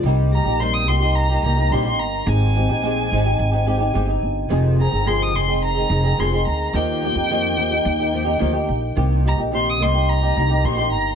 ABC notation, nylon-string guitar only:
X:1
M:4/4
L:1/16
Q:1/4=108
K:Cm
V:1 name="Nylon-string guitar"
[C,G,B,EG]2 [G,B,EG] [B,EG] [C,G,B,EG]2 [G,B,EG] [B,EG]2 [B,EG] [G,B,EG] [B,EG] [C,G,B,EG] [B,EG]3 | [A,CEG]2 [A,CEG] [CEG] [A,CEG]2 [A,CEG] [CEG]2 [CEG] [A,CEG] [CEG] [A,CEG] [CEG]3 | [F,,C,E,A,CA]2 [E,A,CA] [E,A,CA] [F,,C,E,A,CA]2 [E,A,CA] [E,A,CA]2 [E,A,CA] [E,A,CA] [E,A,CA] [F,,C,E,A,CA] [E,A,CA]3 | [E,F,B,EG]2 [F,B,EG] [B,EG] [E,F,B,EG]2 [F,B,EG] [B,EG]2 [B,EG] [F,B,EG] [B,EG] [E,F,B,EG] [B,EG]3 |
[C,E,B,EG]2 [E,B,EG] [B,EG] [C,E,B,EG]2 [E,B,EG] [B,EG]2 [B,EG] [E,B,EG] [B,EG] [C,E,B,EG] [B,EG]3 |]